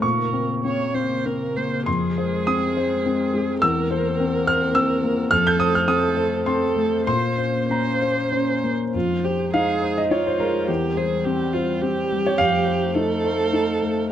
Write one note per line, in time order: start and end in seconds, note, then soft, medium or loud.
0.01 1.83 A#2 medium
0.01 1.86 C#3 medium
0.01 1.86 A#3 medium
0.01 5.27 A#4 medium
0.01 0.54 A#4 medium
0.01 1.52 C#6 medium
0.33 0.63 C4 soft
0.64 0.93 C4 soft
0.64 0.96 C#5 medium
0.94 1.24 C4 soft
0.94 1.27 C5 medium
1.26 1.75 C4 soft
1.26 1.58 A#4 medium
1.57 1.87 A#3 soft
1.57 1.86 C5 medium
1.86 3.58 F2 medium
1.86 3.62 G#3 medium
1.86 7.07 C4 medium
1.86 3.58 G#4 medium
1.86 2.43 C6 medium
2.18 2.65 C5 medium
2.47 2.93 C4 medium
2.47 3.58 D#6 loud
2.77 3.22 C5 medium
3.06 3.51 C4 medium
3.34 3.62 G#3 medium
3.61 5.28 E2 medium
3.61 5.32 A#3 medium
3.61 5.28 A#4 medium
3.61 4.43 E6 loud
3.91 4.36 C5 medium
4.20 4.65 C4 medium
4.47 4.93 C5 medium
4.47 4.73 F6 loud
4.75 5.20 C4 medium
4.75 5.27 E6 loud
5.03 5.32 A#3 medium
5.31 7.03 F2 medium
5.31 7.07 A3 medium
5.31 5.84 A4 medium
5.31 8.90 C5 medium
5.31 5.44 F6 loud
5.47 5.59 G6 loud
5.59 6.05 C5 medium
5.59 5.73 D#6 loud
5.75 5.88 F6 loud
5.87 6.35 C4 medium
5.87 6.45 A4 medium
5.87 6.42 D#6 loud
6.17 6.64 C5 medium
6.46 6.95 C4 medium
6.46 7.06 A4 medium
6.46 7.03 C6 medium
6.76 7.07 A3 medium
7.07 8.90 A#2 medium
7.07 8.94 A#3 medium
7.07 8.94 C#4 medium
7.07 7.68 C5 medium
7.07 7.65 C6 loud
7.38 7.88 C5 medium
7.69 8.19 C#4 medium
7.69 8.71 C5 medium
7.69 8.60 A#5 medium
8.02 8.51 C5 medium
8.32 8.82 C#4 medium
8.64 8.94 A#3 medium
8.94 10.64 F2 medium
8.94 10.65 G#3 medium
8.94 10.64 D#4 medium
8.94 9.26 F4 medium
8.94 14.07 C5 medium
9.24 9.53 G4 medium
9.24 9.71 C5 medium
9.54 9.99 D#4 medium
9.54 10.10 G#4 medium
9.54 9.93 F5 loud
9.82 10.25 C5 medium
9.98 10.10 D#5 medium
10.11 10.57 D#4 medium
10.11 10.69 F4 medium
10.11 10.24 C#5 medium
10.27 10.39 C5 medium
10.40 10.69 G#3 medium
10.40 12.21 A#4 medium
10.68 12.35 E2 medium
10.68 12.39 G3 medium
10.68 12.39 C4 medium
10.68 10.98 G4 medium
10.97 11.26 G#4 medium
10.97 11.42 C5 medium
11.25 11.71 C4 medium
11.25 11.55 G4 medium
11.53 11.83 F4 medium
11.53 11.99 C5 medium
11.81 12.28 C4 medium
11.81 12.96 G4 medium
12.12 12.40 G3 medium
12.27 12.39 C#5 medium
12.38 14.07 F2 medium
12.38 14.11 A3 medium
12.38 14.11 D#4 medium
12.38 14.06 F5 loud
12.67 13.12 C5 medium
12.95 13.41 D#4 medium
12.95 14.09 A4 medium
13.24 13.70 C5 medium
13.53 13.99 D#4 medium
13.82 14.11 A3 soft